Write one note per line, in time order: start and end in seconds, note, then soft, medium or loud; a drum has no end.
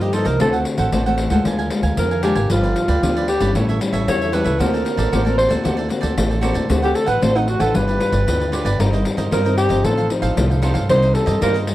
0.00 0.21 G2 medium
0.00 0.38 G2 medium
0.00 0.15 G4 medium
0.00 0.12 A#4 soft
0.00 0.12 C5 soft
0.00 0.13 D#5 medium
0.00 pandeiro soft
0.13 0.36 F3 soft
0.13 0.36 A#3 soft
0.13 0.25 D#4 medium
0.13 0.36 D#4 medium
0.13 0.28 A4 medium
0.13 0.25 A#4 medium
0.13 0.24 C5 medium
0.13 0.24 D#5 medium
0.13 pandeiro medium
0.25 0.38 C2 medium
0.25 0.39 A#4 medium
0.25 0.40 A#4 medium
0.25 0.39 C5 medium
0.25 0.38 D#5 medium
0.25 pandeiro medium
0.40 0.63 D2 medium
0.40 0.90 D3 medium
0.40 0.89 A3 medium
0.40 0.89 C4 medium
0.40 0.52 D4 medium
0.40 0.89 F#4 medium
0.40 0.52 A4 soft
0.40 0.57 A4 medium
0.40 0.53 C5 medium
0.40 0.52 F#5 medium
0.40 pandeiro medium
0.53 0.65 A4 medium
0.53 0.65 C5 medium
0.53 0.65 F#5 medium
0.53 pandeiro soft
0.65 muted cavaquinho stroke soft
0.65 pandeiro medium
0.78 0.90 A1 loud
0.78 0.92 A4 medium
0.78 0.91 C5 medium
0.78 0.91 F#5 medium
0.78 pandeiro medium
0.92 1.26 A1 medium
0.92 1.43 A2 soft
0.92 1.01 A3 soft
0.92 1.01 C4 medium
0.92 1.05 D4 medium
0.92 1.01 F#4 medium
0.92 1.05 A4 medium
0.92 1.05 C5 medium
0.92 1.05 F#5 medium
0.92 pandeiro medium
1.06 1.28 A3 medium
1.06 1.29 C4 medium
1.06 1.29 F#4 medium
1.06 1.31 A4 medium
1.06 1.31 C5 medium
1.06 1.30 F#5 medium
1.06 pandeiro soft
1.18 pandeiro medium
1.30 1.42 D2 medium
1.30 1.67 G#3 medium
1.30 1.67 A#3 medium
1.30 1.67 F4 medium
1.30 1.44 A4 medium
1.30 1.44 C5 medium
1.30 1.44 F#5 medium
1.30 pandeiro medium
1.45 1.68 D2 medium
1.45 1.95 D3 medium
1.45 1.58 D4 soft
1.45 1.58 A#4 soft
1.45 1.58 F5 medium
1.45 1.57 G#5 medium
1.45 pandeiro medium
1.59 1.70 A#4 medium
1.59 1.70 F5 medium
1.59 1.71 G#5 medium
1.59 pandeiro soft
1.70 2.05 G#3 medium
1.70 2.05 A#3 medium
1.70 2.06 F4 medium
1.70 muted cavaquinho stroke soft
1.70 pandeiro medium
1.83 1.95 D2 medium
1.83 2.10 A#4 medium
1.83 2.09 F5 medium
1.83 2.09 G#5 medium
1.83 pandeiro medium
1.97 2.31 F2 medium
1.97 2.48 D3 medium
1.97 2.22 A#4 medium
1.97 pandeiro medium
2.11 2.23 A#4 soft
2.11 2.23 F5 soft
2.11 2.23 G#5 medium
2.11 pandeiro soft
2.23 2.39 G#3 medium
2.23 2.39 A#3 medium
2.23 2.36 D4 medium
2.23 2.40 F4 medium
2.23 2.52 G4 medium
2.23 2.36 A#4 medium
2.23 2.35 F5 medium
2.23 2.34 G#5 medium
2.23 pandeiro medium
2.35 2.47 G#1 medium
2.35 2.49 A#4 medium
2.35 2.49 F5 medium
2.35 2.48 G#5 medium
2.35 pandeiro medium
2.50 2.72 G1 medium
2.50 3.00 G2 medium
2.50 2.84 F3 medium
2.50 2.84 B3 medium
2.50 2.85 D4 medium
2.50 2.62 F4 soft
2.50 3.28 F4 medium
2.50 2.62 G4 soft
2.50 2.63 B4 medium
2.50 2.62 D5 soft
2.50 pandeiro medium
2.63 2.75 G4 medium
2.63 2.75 B4 medium
2.63 2.75 D5 medium
2.63 pandeiro soft
2.76 muted cavaquinho stroke soft
2.76 pandeiro medium
2.88 3.00 D2 loud
2.88 3.02 G4 medium
2.88 3.01 B4 medium
2.88 3.01 D5 medium
2.88 pandeiro medium
3.03 3.36 D2 medium
3.03 3.53 D3 medium
3.03 3.27 F3 medium
3.03 3.28 B3 medium
3.03 3.28 D4 medium
3.03 3.15 F4 medium
3.03 3.15 G4 medium
3.03 3.15 B4 medium
3.03 3.15 D5 medium
3.03 pandeiro medium
3.16 3.41 G4 medium
3.16 3.40 B4 medium
3.16 3.39 D5 medium
3.16 pandeiro soft
3.28 3.53 G4 medium
3.28 pandeiro medium
3.40 3.52 G1 medium
3.40 3.76 G3 medium
3.40 3.77 C#4 medium
3.40 3.77 E4 medium
3.40 3.54 G4 medium
3.40 3.54 B4 medium
3.40 3.53 D5 medium
3.40 pandeiro medium
3.55 3.77 A1 medium
3.55 4.05 A2 medium
3.55 3.67 G4 medium
3.55 3.67 A4 soft
3.55 3.68 C#5 medium
3.55 3.68 E5 medium
3.55 pandeiro medium
3.69 3.80 A4 medium
3.69 3.80 C#5 medium
3.69 3.80 E5 medium
3.69 pandeiro soft
3.80 4.29 G3 medium
3.80 4.30 C#4 medium
3.80 4.30 E4 medium
3.80 muted cavaquinho stroke soft
3.80 pandeiro medium
3.93 4.05 A1 medium
3.93 4.19 A4 medium
3.93 4.19 C#5 medium
3.93 4.19 E5 medium
3.93 pandeiro medium
4.08 4.41 E2 medium
4.08 4.57 E3 medium
4.08 4.35 C#5 medium
4.08 pandeiro medium
4.21 4.32 A4 soft
4.21 4.32 C#5 medium
4.21 4.33 E5 medium
4.21 pandeiro soft
4.32 4.49 G3 medium
4.32 4.49 C#4 medium
4.32 4.49 E4 medium
4.32 4.45 G4 medium
4.32 4.45 A4 medium
4.32 4.62 B4 medium
4.32 4.44 C#5 medium
4.32 4.43 E5 medium
4.32 pandeiro medium
4.44 4.57 C#2 loud
4.44 4.58 A4 medium
4.44 4.58 C#5 medium
4.44 4.58 E5 medium
4.44 pandeiro medium
4.59 4.82 D2 loud
4.59 5.10 D3 medium
4.59 5.08 A#3 medium
4.59 5.09 C4 medium
4.59 4.71 F#4 soft
4.59 5.09 F#4 medium
4.59 4.72 A4 soft
4.59 5.37 A#4 medium
4.59 4.72 C5 medium
4.59 4.72 D5 soft
4.59 pandeiro medium
4.73 4.84 A4 medium
4.73 4.84 C5 medium
4.73 4.84 D5 medium
4.73 pandeiro soft
4.85 muted cavaquinho stroke soft
4.85 pandeiro medium
4.97 5.10 A1 medium
4.97 5.11 A4 medium
4.97 5.11 C5 medium
4.97 5.10 D5 medium
4.97 pandeiro medium
5.12 5.46 A1 medium
5.12 5.63 A2 medium
5.12 5.21 A#3 medium
5.12 5.21 C4 medium
5.12 5.24 F#4 medium
5.12 5.21 F#4 medium
5.12 5.24 A4 medium
5.12 5.25 C5 medium
5.12 5.24 D5 medium
5.12 pandeiro medium
5.25 5.48 A#3 medium
5.25 5.48 C4 medium
5.25 5.48 F#4 medium
5.25 5.49 A4 medium
5.25 5.49 C5 medium
5.25 5.48 D5 medium
5.25 pandeiro soft
5.38 5.54 C5 loud
5.38 pandeiro medium
5.49 5.62 D2 medium
5.49 5.86 A#3 medium
5.49 5.87 C4 medium
5.49 5.87 F#4 medium
5.49 5.63 A4 medium
5.49 5.63 C5 medium
5.49 5.62 D5 medium
5.49 pandeiro medium
5.64 5.87 D2 medium
5.64 6.15 D3 medium
5.64 5.76 F#4 medium
5.64 5.77 A4 medium
5.64 5.77 C5 medium
5.64 5.76 D5 medium
5.64 pandeiro medium
5.77 5.88 A4 medium
5.77 5.88 C5 medium
5.77 5.88 D5 medium
5.77 pandeiro soft
5.89 6.25 A#3 medium
5.89 6.25 C4 medium
5.89 6.25 F#4 medium
5.89 muted cavaquinho stroke soft
5.89 pandeiro medium
6.01 6.15 D2 medium
6.01 6.28 A4 medium
6.01 6.28 C5 medium
6.01 6.28 D5 medium
6.01 pandeiro medium
6.17 6.51 A1 medium
6.17 6.67 A2 medium
6.17 pandeiro medium
6.29 6.41 A4 soft
6.29 6.41 C5 soft
6.29 6.41 D5 medium
6.29 pandeiro soft
6.41 6.65 A#3 medium
6.41 6.65 C4 medium
6.41 6.54 F#4 medium
6.41 6.66 F#4 medium
6.41 6.55 A4 medium
6.41 6.54 C5 medium
6.41 6.53 D5 medium
6.41 pandeiro medium
6.54 6.67 D2 medium
6.54 6.68 A4 medium
6.54 6.68 C5 medium
6.54 6.68 D5 medium
6.54 pandeiro medium
6.69 6.92 D2 loud
6.69 7.20 D3 medium
6.69 7.03 A3 medium
6.69 7.04 C4 medium
6.69 6.81 D4 soft
6.69 7.04 F#4 medium
6.69 6.82 A4 soft
6.69 6.82 C5 soft
6.69 6.81 F#5 medium
6.69 pandeiro medium
6.82 6.97 G4 medium
6.82 6.94 A4 soft
6.82 6.94 C5 medium
6.82 6.94 F#5 medium
6.82 pandeiro soft
6.94 7.10 A4 medium
6.94 muted cavaquinho stroke soft
6.94 pandeiro medium
7.06 7.19 A1 medium
7.06 7.21 A4 medium
7.06 7.24 B4 medium
7.06 7.20 C5 medium
7.06 7.20 F#5 medium
7.06 pandeiro medium
7.22 7.56 A1 medium
7.22 7.72 A2 medium
7.22 7.47 A3 soft
7.22 7.47 C4 medium
7.22 7.34 D4 medium
7.22 7.47 F#4 medium
7.22 7.34 A4 medium
7.22 7.34 C5 medium
7.22 7.38 C5 loud
7.22 7.34 F#5 medium
7.22 pandeiro medium
7.35 7.49 D#4 medium
7.35 7.60 A4 soft
7.35 7.60 C5 medium
7.35 7.59 F#5 medium
7.35 pandeiro soft
7.48 7.62 F#4 medium
7.48 pandeiro medium
7.59 7.72 A1 medium
7.59 7.96 D4 medium
7.59 7.96 F4 medium
7.59 7.77 A4 medium
7.59 7.74 A4 medium
7.59 7.96 B4 medium
7.59 7.73 C5 medium
7.59 7.73 F#5 medium
7.59 pandeiro medium
7.74 7.97 G1 medium
7.74 8.24 G3 medium
7.74 7.86 F4 soft
7.74 7.87 G4 medium
7.74 7.87 B4 soft
7.74 8.80 B4 medium
7.74 7.86 D5 soft
7.74 pandeiro medium
7.88 7.99 G4 medium
7.88 7.99 B4 medium
7.88 8.00 D5 medium
7.88 pandeiro soft
8.00 8.49 D4 medium
8.00 8.49 F4 medium
8.00 8.49 B4 medium
8.00 muted cavaquinho stroke soft
8.00 pandeiro medium
8.12 8.24 G1 loud
8.12 8.39 G4 medium
8.12 8.39 B4 medium
8.12 8.38 D5 medium
8.12 pandeiro medium
8.27 8.60 D2 medium
8.27 8.77 D3 medium
8.27 pandeiro medium
8.40 8.51 G4 soft
8.40 8.52 B4 soft
8.40 8.52 D5 medium
8.40 pandeiro soft
8.52 8.68 D4 medium
8.52 8.65 F4 medium
8.52 8.68 F4 medium
8.52 8.65 G4 medium
8.52 8.65 B4 medium
8.52 8.69 B4 medium
8.52 8.64 D5 medium
8.52 pandeiro medium
8.65 8.77 G1 loud
8.65 8.78 G4 medium
8.65 8.78 B4 medium
8.65 8.78 D5 medium
8.65 pandeiro medium
8.79 9.02 G1 loud
8.79 9.29 G3 medium
8.79 9.28 C4 medium
8.79 8.92 D#4 soft
8.79 9.28 D#4 medium
8.79 9.28 A#4 medium
8.79 8.92 A#4 soft
8.79 8.92 C5 soft
8.79 8.92 D#5 medium
8.79 pandeiro medium
8.93 9.04 A#4 medium
8.93 9.05 C5 medium
8.93 9.05 D#5 medium
8.93 pandeiro soft
9.05 muted cavaquinho stroke soft
9.05 pandeiro medium
9.17 9.29 G2 medium
9.17 9.30 A#4 medium
9.17 9.30 C5 medium
9.17 9.30 D#5 medium
9.17 pandeiro medium
9.31 9.65 G2 medium
9.31 9.70 G3 medium
9.31 9.40 C4 medium
9.31 9.44 D#4 medium
9.31 9.40 D#4 medium
9.31 9.44 A#4 soft
9.31 9.57 A#4 medium
9.31 9.40 A#4 medium
9.31 9.44 C5 medium
9.31 9.44 D#5 medium
9.31 pandeiro medium
9.45 9.67 C4 medium
9.45 9.68 D#4 medium
9.45 9.69 A#4 medium
9.45 9.68 A#4 medium
9.45 9.68 C5 medium
9.45 9.68 D#5 medium
9.45 pandeiro soft
9.57 9.86 G4 loud
9.57 pandeiro medium
9.69 9.82 G1 medium
9.69 10.06 F3 medium
9.69 10.06 C4 medium
9.69 10.06 D#4 medium
9.69 9.83 A#4 medium
9.69 9.83 C5 medium
9.69 9.82 D#5 medium
9.69 pandeiro medium
9.84 10.07 A1 medium
9.84 10.35 A2 medium
9.84 9.96 D#4 soft
9.84 10.11 A4 medium
9.84 9.97 A4 medium
9.84 9.97 C5 soft
9.84 9.96 F5 medium
9.84 pandeiro medium
9.97 10.09 A4 medium
9.97 10.09 C5 medium
9.97 10.09 F5 medium
9.97 pandeiro soft
10.10 10.59 F3 medium
10.10 10.59 C4 medium
10.10 10.59 D#4 medium
10.10 muted cavaquinho stroke soft
10.10 pandeiro medium
10.22 10.34 A1 loud
10.22 10.49 A4 medium
10.22 10.48 C5 medium
10.22 10.48 F5 medium
10.22 pandeiro medium
10.37 10.70 C2 medium
10.37 10.87 A2 medium
10.37 pandeiro medium
10.50 10.61 A4 soft
10.50 10.62 C5 soft
10.50 10.62 F5 medium
10.50 pandeiro soft
10.62 10.78 F3 medium
10.62 10.78 C4 medium
10.62 10.75 D#4 medium
10.62 10.79 D#4 medium
10.62 10.74 A4 medium
10.62 10.74 C5 medium
10.62 10.73 F5 medium
10.62 pandeiro medium
10.74 10.87 G2 medium
10.74 10.88 A4 medium
10.74 10.88 C5 medium
10.74 10.87 F5 medium
10.74 pandeiro medium
10.89 11.12 C2 loud
10.89 11.39 C3 medium
10.89 11.23 G3 medium
10.89 11.23 A#3 medium
10.89 11.01 D#4 medium
10.89 11.24 D#4 medium
10.89 11.02 A#4 soft
10.89 11.16 C5 loud
10.89 11.02 C5 medium
10.89 11.01 D#5 medium
10.89 pandeiro medium
11.02 11.13 A#4 medium
11.02 11.14 C5 medium
11.02 11.14 D#5 medium
11.02 pandeiro soft
11.14 11.41 A4 loud
11.14 muted cavaquinho stroke soft
11.14 pandeiro medium
11.26 11.39 G2 medium
11.26 11.40 A#4 medium
11.26 11.40 C5 medium
11.26 11.40 D#5 medium
11.26 pandeiro medium
11.41 11.75 G2 medium
11.41 11.67 G3 medium
11.41 11.67 A#3 medium
11.41 11.54 D#4 medium
11.41 11.67 D#4 medium
11.41 11.54 A#4 medium
11.41 11.58 A#4 loud
11.41 11.54 C5 medium
11.41 11.53 D#5 medium
11.41 pandeiro medium
11.54 11.75 A#4 medium
11.54 11.75 C5 medium
11.54 11.75 D#5 medium
11.54 pandeiro soft
11.67 pandeiro medium